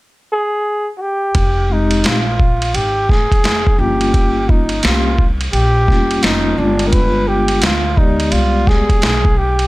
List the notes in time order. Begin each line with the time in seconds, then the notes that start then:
0.32 G#4
0.97 F#4
1.01 G4
1.35 F1, kick, ride
1.69 G#3 C4 D#4 G4
1.91 ride
2.04 A#1 F4, snare, hi-hat pedal, ride
2.40 kick
2.62 ride
2.74 G#1 G4, ride
3.09 G#4, kick, snare
3.32 muted upright bass stroke, kick, ride
3.44 F1, snare, hi-hat pedal, ride
3.67 kick
3.78 G1 F3 A#3 C#4 F4 G4
3.85 G3
4.01 ride
4.14 kick, ride
4.49 D#4, kick
4.69 ride
4.83 C2 G3 A#3 C#4 F4 G4, snare, hi-hat pedal, ride
5.18 kick
5.41 ride
5.53 A#1 G4, ride
5.87 F1 G3 A#3 C#4 F4, kick, snare
6.11 ride
6.23 F1 D#4, snare, hi-hat pedal, ride
6.57 G1 G#3 B3 D4 F4
6.79 ride
6.87 A#4
6.93 B4, kick, ride
7.28 G4
7.48 ride
7.62 D2 F4, snare, hi-hat pedal, ride
7.96 G#3 B3 D#4 G4 D5, kick
8.20 ride
8.32 C2 F4, ride
8.67 G#4, kick, snare
8.90 kick, ride
9.02 B1, snare, hi-hat pedal, ride
9.25 kick
9.38 G4
9.59 ride